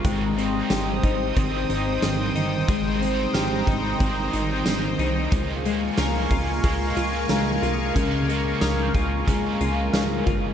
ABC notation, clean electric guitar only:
X:1
M:4/4
L:1/8
Q:1/4=91
K:Ab
V:1 name="Clean electric guitar"
A, C G E C E C E | A, C G E C E C E | z A, B F A, F A, F | D, A, B F A, F A, F |]